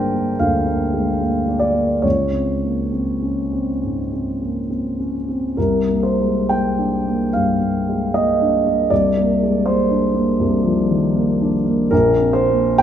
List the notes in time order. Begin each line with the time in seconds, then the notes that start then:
Already playing: G1 G#3 A#3 D4 A#4 C5 G5
0.15 A#3
0.39 D2 F5
0.66 A#3
0.93 G#3
1.20 A#3
1.48 D4
1.59 D5
1.75 A#3
2.02 C#2 C#5
2.33 C4
2.63 A#3
2.92 C4
3.22 C#4
3.53 C4
3.83 G#2
4.13 C4
4.41 A#3
4.70 C4
5.00 C#4
5.29 C4
5.57 C2 A#4
5.88 A#3
6.03 C5
6.20 G#3
6.49 A#3 G5
6.78 D4
7.06 A#3
7.33 G2 F5
7.61 A#3
7.89 G#3
8.14 A#3 D#5
8.42 D4
8.66 A#3
8.90 C2 D5
9.17 A#3
9.42 G#3
9.66 A#3 C5
9.90 D4
10.14 A#3
10.39 C2
10.63 F3
10.89 D#3
11.15 A#3
11.41 D4
11.65 A#3
11.91 A#1 A#4
12.19 C4
12.33 C5
12.50 A#3
12.78 C4 G5